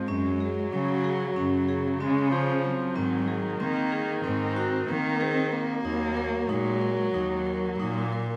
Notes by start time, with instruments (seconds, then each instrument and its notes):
Already playing: cello G#3
0.07 cello F#2, viola F#3, vibraphone C#4
0.40 vibraphone G#4
0.72 cello C#3 F#3, vibraphone C#4
1.04 vibraphone G#4
1.36 cello F#2 C#3, vibraphone C#4
1.69 vibraphone G#4
2.00 cello C#3, viola G#3, vibraphone C#4
2.31 viola F3, vibraphone G#4
2.64 cello F#3, vibraphone C4
2.95 cello G#2, viola D#3, vibraphone C4
3.28 vibraphone G#4
3.60 cello D#3 A#3, vibraphone C4
3.92 vibraphone G#4
4.24 cello G#2 C4, vibraphone C4
4.56 vibraphone F#4
4.88 cello D#3 A#3, vibraphone C4
5.21 cello C4, vibraphone G#4
5.52 cello A#3, vibraphone C4
5.84 cello D#2, viola F#3, vibraphone D#4
6.17 vibraphone A#4
6.49 cello A#2 G#3, vibraphone D#4
6.81 vibraphone A#4
7.14 cello D#2 F#3, vibraphone D#4
7.46 vibraphone A#4
7.79 cello A#2, viola A#3, vibraphone D#4
8.12 vibraphone A#4